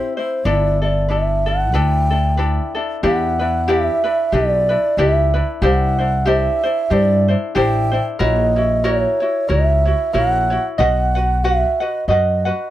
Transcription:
0.00 0.17 C4 medium
0.00 0.18 E4 medium
0.00 0.17 G4 medium
0.00 0.16 C5 medium
0.00 0.17 C5 medium
0.17 0.45 C4 soft
0.17 0.45 E4 soft
0.17 0.45 C5 soft
0.17 0.47 C5 medium
0.45 1.74 G1 loud
0.45 0.82 D4 medium
0.45 0.81 E4 medium
0.45 0.80 A4 medium
0.45 0.81 B4 medium
0.45 0.82 D5 medium
0.82 1.08 D4 soft
0.82 1.09 E4 soft
0.82 1.08 A4 soft
0.82 0.87 D#5 medium
0.86 1.12 D5 medium
1.08 1.46 D4 medium
1.08 1.45 E4 medium
1.08 1.45 A4 medium
1.08 1.46 B4 medium
1.08 1.50 E5 medium
1.46 1.73 D4 soft
1.46 1.73 E4 soft
1.46 1.73 A4 medium
1.46 1.77 F#5 medium
1.74 2.58 D2 medium
1.74 2.11 D4 medium
1.74 2.10 E4 medium
1.74 2.09 A4 medium
1.74 2.10 B4 medium
1.74 2.77 G5 loud
2.10 2.37 D4 soft
2.10 2.38 E4 soft
2.10 2.37 A4 medium
2.37 2.75 D4 medium
2.37 2.75 E4 medium
2.37 2.73 A4 medium
2.37 2.74 B4 medium
2.75 3.02 D4 soft
2.75 3.02 E4 medium
2.75 3.03 A4 medium
3.03 3.88 E2 medium
3.03 3.40 D4 medium
3.03 3.40 E4 medium
3.03 3.40 G4 medium
3.03 3.38 B4 medium
3.03 3.72 F#5 medium
3.39 3.67 D4 soft
3.39 3.67 E4 soft
3.39 3.68 B4 soft
3.68 4.04 D4 medium
3.68 4.03 E4 medium
3.68 4.05 G4 medium
3.68 4.03 B4 medium
3.68 4.35 E5 medium
4.04 4.32 D4 soft
4.04 4.33 E4 soft
4.04 4.32 B4 medium
4.32 4.75 B1 medium
4.32 4.70 D4 medium
4.32 4.69 E4 medium
4.32 4.69 G4 medium
4.32 4.68 B4 medium
4.32 4.99 D5 medium
4.69 4.97 D4 soft
4.69 4.97 E4 soft
4.69 4.97 B4 medium
4.97 5.39 C#2 medium
4.97 5.35 D4 medium
4.97 5.33 E4 medium
4.97 5.35 G4 medium
4.97 5.33 B4 medium
4.97 5.48 E5 medium
5.34 5.62 D4 soft
5.34 5.62 E4 soft
5.34 5.62 B4 soft
5.62 6.46 C2 medium
5.62 5.99 D4 medium
5.62 5.98 E4 medium
5.62 5.99 G4 medium
5.62 5.97 C5 medium
5.62 6.29 F#5 medium
5.99 6.25 D4 soft
5.99 6.26 E4 soft
5.99 6.26 C5 soft
6.25 6.63 D4 medium
6.25 6.63 E4 medium
6.25 6.63 G4 medium
6.25 6.62 C5 medium
6.25 6.94 E5 medium
6.63 6.90 D4 soft
6.63 6.91 E4 soft
6.63 6.91 C5 medium
6.90 7.33 G2 loud
6.90 7.28 D4 medium
6.90 7.28 E4 medium
6.90 7.28 G4 medium
6.90 7.27 C5 medium
6.90 7.33 D5 loud
7.28 7.54 D4 soft
7.28 7.55 E4 soft
7.28 7.55 C5 medium
7.55 7.98 A1 medium
7.55 7.93 D4 medium
7.55 7.92 E4 medium
7.55 7.92 G4 medium
7.55 7.90 C5 medium
7.55 8.03 G5 loud
7.92 8.20 D4 soft
7.92 8.19 E4 medium
7.92 8.20 C5 soft
8.19 9.04 A#1 loud
8.19 8.56 E4 medium
8.19 8.56 F#4 medium
8.19 8.56 A#4 medium
8.19 8.55 C#5 medium
8.19 8.86 D#5 medium
8.56 8.83 E4 soft
8.56 8.83 F#4 soft
8.56 8.83 C#5 soft
8.84 9.21 E4 medium
8.84 9.21 F#4 medium
8.84 9.20 A#4 medium
8.84 9.50 C#5 medium
8.84 9.19 C#5 medium
9.20 9.48 E4 soft
9.20 9.48 F#4 soft
9.20 9.48 C#5 soft
9.49 9.91 C#2 medium
9.49 9.85 E4 medium
9.49 9.86 F#4 medium
9.49 9.85 A#4 medium
9.49 9.84 C#5 medium
9.49 10.15 E5 loud
9.85 10.14 E4 medium
9.85 10.13 F#4 soft
9.85 10.13 C#5 soft
10.13 10.56 A#1 medium
10.13 10.50 E4 medium
10.13 10.51 F#4 medium
10.13 10.50 A#4 medium
10.13 10.49 C#5 medium
10.13 10.64 F#5 loud
10.50 10.79 E4 soft
10.50 10.78 F#4 soft
10.50 10.78 C#5 medium
10.78 11.63 B1 loud
10.78 11.16 F#4 medium
10.78 11.15 B4 medium
10.78 11.15 D#5 medium
10.78 11.46 F#5 medium
10.78 11.14 F#5 medium
11.15 11.43 F#4 soft
11.15 11.44 B4 soft
11.15 11.43 F#5 medium
11.44 11.80 F#4 medium
11.44 11.80 B4 medium
11.44 11.83 E5 medium
11.44 11.79 F#5 medium
11.80 12.08 F#4 soft
11.80 12.08 B4 soft
11.80 12.09 D#5 medium
11.80 12.08 F#5 medium
12.08 12.50 F#2 medium
12.08 12.45 F#4 medium
12.08 12.45 B4 medium
12.08 12.45 D#5 medium
12.08 12.69 D#5 medium
12.08 12.44 F#5 medium
12.45 12.70 F#4 soft
12.45 12.70 B4 soft
12.45 12.70 F#5 soft

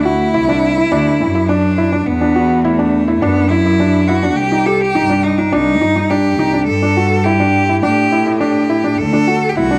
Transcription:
0.00 0.10 D2 loud
0.04 1.50 E4 loud
0.04 0.26 F#4 medium
0.34 0.83 C2 medium
0.34 0.44 E4 medium
0.49 0.69 D4 medium
0.77 0.88 E4 medium
0.91 1.09 D2 loud
0.91 1.12 D4 loud
1.20 1.98 F#2 medium
1.20 1.31 E4 medium
1.35 1.45 E4 medium
1.49 2.07 D4 loud
1.49 1.70 D4 medium
1.78 1.88 E4 medium
1.92 2.03 D4 medium
2.06 3.13 E2 loud
2.06 2.65 B3 loud
2.21 2.32 D4 medium
2.36 2.56 F#4 medium
2.64 3.23 A3 loud
2.64 2.75 E4 medium
2.79 3.00 D4 medium
3.08 3.18 E4 medium
3.21 4.38 F#2 loud
3.21 3.52 B3 loud
3.21 3.43 D4 medium
3.50 4.09 E4 loud
3.50 3.62 E4 medium
3.66 3.76 E4 medium
3.80 4.01 D4 medium
4.08 4.19 E4 medium
4.08 4.38 F#4 loud
4.23 4.33 D4 medium
4.37 4.72 C2 loud
4.37 4.68 G4 loud
4.52 4.62 D#4 medium
4.66 4.87 G4 medium
4.66 4.82 A4 loud
4.81 5.25 G4 loud
4.95 5.44 G2 medium
4.95 5.06 D#4 medium
5.10 5.30 D4 medium
5.23 5.40 D#4 loud
5.38 5.54 D4 loud
5.38 5.49 D#4 medium
5.52 5.82 C2 loud
5.52 5.73 D4 loud
5.52 6.11 D#4 loud
5.81 6.39 G2 medium
5.81 5.92 D#4 medium
5.96 6.06 D#4 medium
6.10 6.31 D4 medium
6.10 6.67 G4 loud
6.39 6.57 C2 medium
6.39 6.50 D#4 medium
6.53 6.64 D4 medium
6.67 7.75 G2 loud
6.67 7.26 A4 loud
6.82 6.93 D4 medium
6.97 7.18 F#4 medium
7.25 7.36 E4 medium
7.25 7.82 G4 loud
7.40 7.61 D4 medium
7.69 7.79 E4 medium
7.82 8.90 A2 loud
7.82 8.04 D4 medium
7.82 8.37 G4 loud
8.12 8.23 E4 medium
8.26 8.37 E4 medium
8.40 8.62 D4 medium
8.40 8.99 G4 loud
8.69 8.80 E4 medium
8.84 8.95 D4 medium
8.98 9.34 D2 loud
8.98 9.51 A4 loud
9.13 9.24 D4 medium
9.27 9.48 F#4 medium
9.49 9.57 G4 medium
9.56 9.79 C2 loud
9.56 9.67 E4 medium
9.56 9.79 F#4 loud
9.71 9.79 D4 medium

